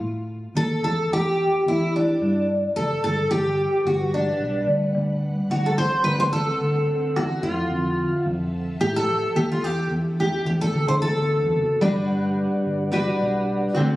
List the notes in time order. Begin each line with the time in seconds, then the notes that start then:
0.01 A2
0.55 D#2 A4
0.82 E2 A4
1.11 E2 G4
1.66 E2 E4
1.96 D4
2.21 G2
2.76 F#1 A4
3.03 G1 G3 A4 B4 F#5
3.31 G1 G4
3.85 G1 F#4
4.14 D4
4.40 B1
4.67 D2
4.95 D2 D3 C4
5.50 D2 F#4
5.66 A4
5.78 C5
6.04 D2 B4
6.20 C5
6.33 A4
6.61 D2
7.16 E2 F#4
7.43 F2 F3 F4 A4 E5
7.71 F2
8.26 F2
8.81 A2 G4
8.96 A4
9.36 D#2 G4
9.52 F4
9.63 E2 G4
9.90 E2
10.20 G4
10.45 E2 G4
10.61 A4
10.72 D2
10.87 D3 C5
11.00 D2 A4
11.16 D2
11.44 E2
11.55 F#1
11.81 G1 G3 D4 F#4 B4
12.10 G1
12.65 G1
12.91 G3 D4 F#4 B4
13.19 B1
13.74 D2 D3 A3 C4 F#4